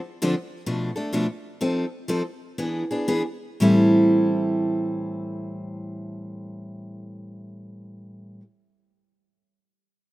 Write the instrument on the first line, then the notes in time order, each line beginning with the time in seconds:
steel-string acoustic guitar
0.22 D3 F3 C4 D4 A4
0.66 B2 F3 A3 D4 A4
0.96 A3 D4 A4
1.13 B2 F3 A3 D4 A4
1.61 F3 C4 D#4 A4
2.08 F3 C4 D#4 A4
2.58 E3 B3 D4 G#4
2.91 B3 D4 G#4
3.08 E3 B3 D4 G#4
3.60 A2 E3 G3 C4 E4 A4